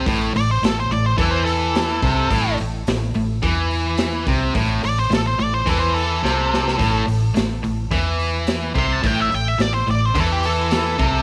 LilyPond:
<<
  \new Staff \with { instrumentName = "Lead electric guitar" } { \time 4/4 \key a \minor \tempo 4 = 107 r8 d''16 c''16 a'16 c''16 d''16 c''16 a'16 c''16 a'4.~ | a'8 r2. r8 | r8 d''16 c''16 a'16 c''16 d''16 c''16 a'16 c''16 a'4.~ | a'8 r2. c'''16 a''16 |
g''16 e''16 g''16 e''16 d''16 c''16 d''16 c''16 a'16 g'16 a'8 a'4 | }
  \new Staff \with { instrumentName = "Distorted electric guitar" } { \clef bass \time 4/4 \key a \minor a,8 a,8 a,8 a,8 e4. c8 | a,8 a,8 a,8 a,8 e4. c8 | a,8 a,8 a,8 a,8 e4 c4 | a,8 a,8 a,8 a,8 e4. c8 |
a,8 a,8 a,8 a,8 e4. c8 | }
  \new Staff \with { instrumentName = "Fingered electric bass" } { \clef bass \time 4/4 \key a \minor a,,8 a,,8 a,,8 a,,8 e,4. c,8 | a,,8 a,,8 a,,8 a,,8 e,4. c,8 | a,,8 a,,8 a,,8 a,,8 e,4 c,4 | a,,8 a,,8 a,,8 a,,8 e,4. c,8 |
a,,8 a,,8 a,,8 a,,8 e,4. c,8 | }
  \new DrumStaff \with { instrumentName = "Drums" } \drummode { \time 4/4 <hho bd>8 hho8 <hho sn>8 hho8 <hho bd>8 hho8 <hho sn>8 <hho bd>8 | <hho bd>8 hho8 <hho sn>8 hho8 <hho bd>8 hho8 <hho sn>8 <hho bd>8 | <hho bd>8 hho8 <hho sn>8 hho8 <hho bd>8 hho8 sn8 sn16 sn16 | <hho bd>8 hho8 <hho sn>8 hho8 <hho bd>8 hho8 <hho sn>8 <hho bd>8 |
<hho bd>8 hho8 <hho sn>8 hho8 <hho bd>8 hho8 <hho sn>8 <hho bd>8 | }
>>